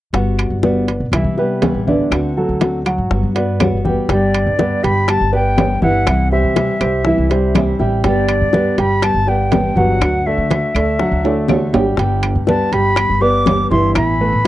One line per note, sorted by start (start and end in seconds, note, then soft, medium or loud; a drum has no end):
0.13 0.49 G1 medium
0.13 0.62 G3 medium
0.13 0.63 B3 medium
0.13 0.55 F#4 medium
0.13 0.63 F#4 medium
0.13 0.55 F#5 medium
0.13 high bongo medium
0.13 high conga soft
0.13 high timbale medium
0.39 high conga soft
0.39 high timbale medium
0.39 claves medium
0.50 0.98 G1 medium
0.63 0.87 G3 medium
0.63 1.04 B3 medium
0.63 0.88 B3 medium
0.63 0.88 F#4 medium
0.63 1.05 B4 medium
0.63 1.05 D5 medium
0.63 high bongo medium
0.63 high conga medium
0.63 low timbale medium
0.88 muted nylon-string guitar stroke soft
0.88 high bongo soft
0.88 high conga soft
0.88 high timbale medium
1.00 1.11 B1 medium
1.12 1.24 C2 medium
1.12 1.36 E3 soft
1.12 1.33 E3 medium
1.12 1.37 G3 soft
1.12 1.37 B3 soft
1.12 1.34 E4 medium
1.12 1.36 E4 soft
1.12 1.34 E5 medium
1.12 high bongo medium
1.12 high conga soft
1.12 high timbale medium
1.12 claves medium
1.24 1.72 C3 medium
1.37 1.78 G3 medium
1.37 1.62 G3 soft
1.37 1.62 B3 soft
1.37 1.61 E4 soft
1.37 1.79 G4 medium
1.37 1.79 B4 medium
1.37 high bongo soft
1.37 high conga soft
1.62 1.86 C3 medium
1.62 1.87 E3 medium
1.62 1.87 G3 medium
1.62 1.87 B3 medium
1.62 1.86 E4 medium
1.62 high bongo soft
1.62 low bongo medium
1.62 high conga medium
1.62 high timbale medium
1.62 low timbale medium
1.74 1.98 A1 medium
1.87 2.28 D3 medium
1.87 2.11 G3 soft
1.87 2.12 B3 soft
1.87 2.28 D4 medium
1.87 2.11 E4 soft
1.87 2.29 D5 medium
1.87 high bongo soft
1.87 high conga medium
2.11 2.47 D2 medium
2.11 2.59 D3 medium
2.11 2.60 A3 medium
2.11 2.60 C4 medium
2.11 2.61 F#4 medium
2.11 high bongo medium
2.11 high conga soft
2.11 high timbale medium
2.11 claves medium
2.37 2.78 F#3 medium
2.37 2.78 F#4 medium
2.37 2.78 A4 medium
2.37 high conga soft
2.49 2.96 D2 medium
2.60 2.83 D3 medium
2.60 2.84 A3 medium
2.60 2.84 C4 medium
2.60 2.84 F#4 medium
2.60 high bongo medium
2.60 high conga medium
2.60 high timbale medium
2.60 low timbale medium
2.85 3.27 F#3 medium
2.85 3.27 F#4 medium
2.85 3.27 F#5 medium
2.85 muted nylon-string guitar stroke soft
2.85 high bongo soft
2.85 high conga soft
2.85 high timbale medium
2.85 claves medium
2.98 3.10 G#1 medium
3.10 3.22 G1 medium
3.10 3.34 G3 soft
3.10 3.35 B3 soft
3.10 3.34 F#4 medium
3.10 high bongo medium
3.10 high conga soft
3.23 3.70 G2 medium
3.35 3.76 B3 medium
3.35 3.60 B3 soft
3.35 3.59 F#4 soft
3.35 3.77 B4 medium
3.35 3.77 D5 medium
3.35 high bongo soft
3.35 high conga soft
3.35 high timbale medium
3.59 3.84 G3 medium
3.59 3.84 B3 medium
3.59 3.84 F#4 medium
3.59 high bongo soft
3.59 low bongo medium
3.59 high conga medium
3.59 high timbale medium
3.59 low timbale medium
3.59 claves medium
3.72 3.96 F#1 medium
3.85 4.05 G3 medium
3.85 4.10 B3 soft
3.85 4.09 F#4 soft
3.85 4.05 G4 medium
3.85 4.05 G5 medium
3.85 high bongo soft
3.85 high conga medium
4.09 4.45 G1 medium
4.09 4.57 D3 medium
4.09 4.50 G3 medium
4.09 4.58 G3 medium
4.09 4.58 B3 medium
4.09 4.50 G4 medium
4.09 4.59 G4 medium
4.09 4.86 D5 medium
4.09 4.51 G5 medium
4.09 high bongo medium
4.09 high conga soft
4.09 high timbale medium
4.34 high conga soft
4.34 high timbale medium
4.34 claves medium
4.47 4.70 G2 medium
4.58 4.82 D3 medium
4.58 4.82 G3 medium
4.58 4.79 B3 medium
4.58 4.83 B3 medium
4.58 4.83 G4 medium
4.58 4.80 B4 medium
4.58 4.80 D5 medium
4.58 high bongo medium
4.58 high conga medium
4.58 low timbale medium
4.83 5.19 G1 medium
4.83 5.24 G3 medium
4.83 5.24 G4 medium
4.83 5.25 G5 medium
4.83 5.11 B5 loud
4.83 muted nylon-string guitar stroke medium
4.83 high bongo soft
4.83 high conga soft
4.83 high timbale medium
5.08 5.32 D3 soft
5.08 5.32 G3 soft
5.08 5.33 B3 medium
5.08 5.31 G4 medium
5.08 5.34 A5 loud
5.08 high bongo medium
5.08 high conga soft
5.08 high timbale medium
5.08 claves medium
5.21 5.80 G1 medium
5.33 5.58 G3 soft
5.33 5.73 B3 medium
5.33 5.57 B3 soft
5.33 5.57 G4 soft
5.33 5.74 B4 medium
5.33 5.74 D5 medium
5.33 5.80 G5 medium
5.33 high bongo soft
5.33 high conga soft
5.57 5.81 D3 medium
5.57 5.82 G3 medium
5.57 5.82 B3 medium
5.57 5.81 G4 medium
5.57 high bongo soft
5.57 low bongo medium
5.57 high conga medium
5.57 high timbale medium
5.57 low timbale medium
5.82 6.06 G1 medium
5.82 6.23 E3 medium
5.82 6.06 G3 soft
5.82 6.07 B3 soft
5.82 6.23 E4 medium
5.82 6.06 G4 medium
5.82 6.23 E5 medium
5.82 6.29 F#5 medium
5.82 high bongo soft
5.82 high conga medium
6.07 6.43 C2 medium
6.07 6.55 C3 medium
6.07 6.55 E3 medium
6.07 6.56 G3 medium
6.07 6.56 C4 medium
6.07 6.56 E4 medium
6.07 high bongo medium
6.07 high conga soft
6.07 high timbale medium
6.07 claves medium
6.32 6.73 G3 medium
6.32 6.73 G4 medium
6.32 6.73 C5 medium
6.32 7.76 E5 medium
6.32 high conga soft
6.44 6.68 C3 medium
6.56 6.80 C3 medium
6.56 6.80 E3 medium
6.56 6.80 G3 medium
6.56 6.81 C4 medium
6.56 6.81 E4 medium
6.56 high bongo medium
6.56 high conga medium
6.56 high timbale medium
6.56 low timbale medium
6.81 7.16 C2 medium
6.81 7.01 G3 medium
6.81 7.02 G4 medium
6.81 7.02 C5 medium
6.81 muted nylon-string guitar stroke medium
6.81 high bongo soft
6.81 high conga soft
6.81 high timbale medium
6.81 claves medium
7.05 7.30 E3 soft
7.05 7.26 E3 medium
7.05 7.30 G3 medium
7.05 7.30 C4 soft
7.05 7.26 E4 medium
7.05 7.29 E4 medium
7.05 7.27 E5 medium
7.05 high bongo medium
7.05 high conga soft
7.18 7.77 C2 medium
7.30 7.71 G3 medium
7.30 7.54 G3 soft
7.30 7.55 C4 soft
7.30 7.54 E4 soft
7.30 7.71 G4 medium
7.30 7.72 C5 medium
7.30 high bongo soft
7.30 high conga soft
7.30 high timbale medium
7.54 7.79 C3 medium
7.54 7.79 E3 medium
7.54 7.79 G3 medium
7.54 7.79 C4 medium
7.54 7.78 E4 medium
7.54 high bongo soft
7.54 low bongo medium
7.54 high conga medium
7.54 high timbale medium
7.54 low timbale medium
7.54 claves medium
7.79 8.03 A1 medium
7.79 8.00 G3 medium
7.79 8.03 G3 soft
7.79 8.04 C4 soft
7.79 8.03 E4 medium
7.79 8.00 G4 medium
7.79 8.00 G5 medium
7.79 high bongo soft
8.04 8.40 G1 medium
8.04 8.51 D3 medium
8.04 8.45 G3 medium
8.04 8.52 G3 medium
8.04 8.53 B3 medium
8.04 8.45 G4 medium
8.04 8.53 G4 medium
8.04 8.81 D5 medium
8.04 8.45 G5 medium
8.04 high bongo medium
8.04 high conga soft
8.04 high timbale medium
8.28 high conga soft
8.28 high timbale medium
8.28 claves medium
8.41 8.65 G2 medium
8.52 8.76 D3 medium
8.52 8.77 G3 medium
8.52 8.74 B3 medium
8.52 8.77 B3 medium
8.52 8.78 G4 medium
8.52 8.74 B4 medium
8.52 8.74 D5 medium
8.52 high bongo medium
8.52 high conga medium
8.52 low timbale medium
8.78 9.13 G1 medium
8.78 9.19 G3 medium
8.78 9.19 G4 medium
8.78 9.19 G5 medium
8.78 9.05 B5 medium
8.78 muted nylon-string guitar stroke medium
8.78 high bongo soft
8.78 high conga soft
8.78 high timbale medium
9.02 9.26 D3 soft
9.02 9.27 G3 soft
9.02 9.27 B3 medium
9.02 9.25 G4 soft
9.02 9.30 A5 loud
9.02 high bongo medium
9.02 high conga soft
9.02 high timbale medium
9.02 claves medium
9.14 9.74 G1 medium
9.26 9.50 G3 soft
9.26 9.68 B3 medium
9.26 9.51 B3 soft
9.26 9.51 G4 soft
9.26 9.68 B4 medium
9.26 9.68 D5 medium
9.26 9.78 G5 medium
9.26 high bongo soft
9.26 high conga soft
9.51 9.75 D3 medium
9.51 9.76 G3 medium
9.51 9.76 B3 medium
9.51 9.75 G4 medium
9.51 high bongo soft
9.51 low bongo medium
9.51 high conga medium
9.51 high timbale medium
9.51 low timbale medium
9.76 10.00 G1 medium
9.76 10.18 F#3 medium
9.76 10.00 G3 soft
9.76 10.01 B3 soft
9.76 10.18 F#4 medium
9.76 10.00 G4 soft
9.76 10.28 F#5 medium
9.76 10.18 F#5 medium
9.76 high bongo soft
9.76 high conga medium
10.00 10.36 D2 medium
10.00 10.48 D3 medium
10.00 10.50 A3 medium
10.00 10.50 D4 medium
10.00 10.50 F#4 medium
10.00 high bongo medium
10.00 high conga soft
10.00 high timbale medium
10.00 claves medium
10.26 10.67 A3 medium
10.26 10.67 A4 medium
10.26 10.67 D5 medium
10.26 11.74 E5 medium
10.26 high conga soft
10.38 10.62 D3 medium
10.49 10.74 D3 medium
10.49 10.74 A3 medium
10.49 10.74 D4 medium
10.49 10.75 F#4 medium
10.49 high bongo medium
10.49 high conga medium
10.49 high timbale medium
10.49 low timbale medium
10.74 11.10 D2 medium
10.74 10.96 A3 medium
10.74 10.96 A4 medium
10.74 10.96 D5 medium
10.74 muted nylon-string guitar stroke medium
10.74 high bongo soft
10.74 high conga soft
10.74 high timbale medium
10.74 claves medium
10.99 11.24 D3 soft
10.99 11.21 F#3 medium
10.99 11.24 A3 soft
10.99 11.23 D4 soft
10.99 11.21 F#4 medium
10.99 11.22 F#4 soft
10.99 11.21 F#5 medium
10.99 high bongo medium
10.99 high conga soft
11.12 11.71 D2 medium
11.23 11.65 A3 medium
11.23 11.48 A3 soft
11.23 11.48 D4 soft
11.23 11.48 F#4 soft
11.23 11.66 A4 medium
11.23 11.66 D5 medium
11.23 high bongo soft
11.23 high conga soft
11.23 high timbale medium
11.48 11.72 D3 medium
11.48 11.73 A3 medium
11.48 11.73 D4 medium
11.48 11.72 F#4 medium
11.48 high bongo soft
11.48 low bongo medium
11.48 high conga medium
11.48 low timbale medium
11.48 claves medium
11.73 11.97 G#1 medium
11.73 11.94 G3 medium
11.73 11.98 A3 soft
11.73 11.98 D4 soft
11.73 11.97 F#4 soft
11.73 11.95 G4 medium
11.73 11.95 G5 medium
11.73 high bongo soft
11.73 low timbale medium
11.97 12.33 G1 medium
11.97 12.46 D3 medium
11.97 12.46 G3 medium
11.97 12.39 G3 medium
11.97 12.47 B3 medium
11.97 12.39 G4 medium
11.97 12.48 G4 medium
11.97 12.40 G5 medium
11.97 high bongo medium
11.97 high conga soft
11.97 high timbale medium
12.23 high conga soft
12.23 high timbale medium
12.23 claves medium
12.35 12.59 G2 medium
12.47 12.71 D3 medium
12.47 12.71 G3 medium
12.47 12.68 B3 medium
12.47 12.71 B3 medium
12.47 12.72 G4 medium
12.47 12.68 B4 medium
12.47 12.69 D5 medium
12.47 12.74 A5 medium
12.47 high bongo medium
12.47 high conga medium
12.47 low timbale medium
12.72 13.08 G1 medium
12.72 13.13 G3 medium
12.72 13.13 G4 medium
12.72 13.14 G5 medium
12.72 13.23 B5 loud
12.72 muted nylon-string guitar stroke soft
12.72 high bongo soft
12.72 high conga soft
12.72 high timbale medium
12.96 13.20 D3 soft
12.96 13.21 G3 soft
12.96 13.20 B3 soft
12.96 13.19 G4 soft
12.96 high bongo medium
12.96 high conga soft
12.96 high timbale medium
12.96 claves medium
13.10 13.68 G1 medium
13.20 13.45 G3 soft
13.20 13.45 B3 soft
13.20 13.62 B3 medium
13.20 13.45 G4 soft
13.20 13.62 B4 medium
13.20 13.63 D5 medium
13.20 13.70 D6 medium
13.20 high bongo soft
13.20 high conga soft
13.46 13.70 D3 medium
13.46 13.70 G3 medium
13.46 13.71 B3 medium
13.46 13.70 G4 medium
13.46 high bongo soft
13.46 low bongo medium
13.46 high conga medium
13.46 high timbale medium
13.46 low timbale medium
13.71 13.95 G1 medium
13.71 14.11 E3 medium
13.71 13.96 G3 soft
13.71 13.95 B3 soft
13.71 14.12 E4 medium
13.71 13.95 G4 soft
13.71 14.12 E5 medium
13.71 13.94 C6 medium
13.71 high bongo soft
13.71 high conga medium
13.95 14.31 A1 medium
13.95 14.43 E3 medium
13.95 14.44 A3 medium
13.95 14.45 B3 medium
13.95 14.45 E4 medium
13.95 14.47 B5 medium
13.95 high bongo medium
13.95 high timbale medium
13.95 claves medium
14.20 14.47 A3 medium
14.20 14.47 A4 medium
14.20 14.47 B4 medium
14.20 high conga soft
14.32 14.47 A2 medium
14.44 14.47 E3 medium